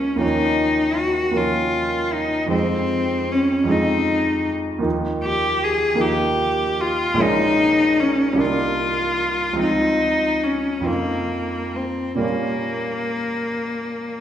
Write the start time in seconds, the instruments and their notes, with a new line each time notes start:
Already playing: grand piano C#2 F3 A#3 C#4 D#4, cello C#4
0.16 grand piano D#2 F3 A#3 C#4
0.21 grand piano D#4, cello D#4
0.98 cello F#4
1.31 grand piano D#2 F3 A#3 C#4
1.36 grand piano D#4, cello F4
2.14 cello D#4
2.46 grand piano F2 F3 G#3
2.50 grand piano C4 D#4, cello C4
3.32 cello C#4
3.64 grand piano F2 F3 G#3
3.68 grand piano C4 D#4, cello D#4
4.79 grand piano D#2 F3 A#3
4.83 grand piano D#4
5.24 cello G4
5.64 cello G#4
5.95 grand piano D#2 F3 A#3 D#4
6.01 cello G4
6.81 cello F4
7.14 grand piano A#1 G#3 A#3
7.19 grand piano C#4 D#4, cello D#4
8.00 cello C#4
8.33 grand piano C2 G3 A#3
8.37 grand piano D4 D#4, cello F4
9.53 grand piano C#2 F3 C4
9.57 grand piano D#4
9.62 cello D#4
10.43 cello C#4
10.80 grand piano F2 F3 C4
10.85 cello A#3, grand piano D#4 F4
11.76 cello C4
12.15 grand piano A#2 G3 A#3 C#4
12.21 cello A#3, grand piano F4